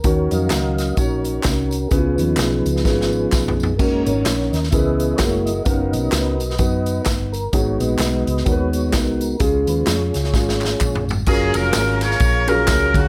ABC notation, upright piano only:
X:1
M:4/4
L:1/8
Q:"Swing" 1/4=128
K:F#
V:1 name="Upright piano"
[D,CDFA]3 z [CDFc]3 z | [C,C=E^EGB]3 z [C=E^EGB]3 z | [CDFA]3 z [C,C=EGAB]2 [=A,^A,EFG]2 | [B,DFA]3 z [B,DFB]3 z |
[G,,B,DFG]3 z [B,DFAB]3 z | [C,G,CEG]3 z [G,CEG]3 z | [F,CEGA]3 z2 [F,CEGA]2 z |]